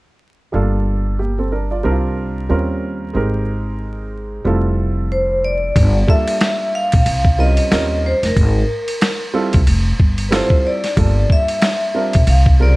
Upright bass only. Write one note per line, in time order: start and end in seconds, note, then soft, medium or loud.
0.54 1.80 G1 medium
1.85 2.46 C2 medium
2.50 3.11 D#2 medium
3.15 4.41 G#1 medium
4.45 5.72 F1 medium
5.76 6.01 G1 loud
6.93 7.04 A#1 medium
7.06 7.57 C2 medium
7.71 8.12 D#2 medium
8.23 8.34 F1 medium
8.36 8.62 G#1 medium
9.54 9.68 C2 medium
9.67 9.92 F1 medium
9.99 10.40 G1 medium
10.97 11.23 G1 loud
12.15 12.26 A#1 medium
12.27 12.76 C2 loud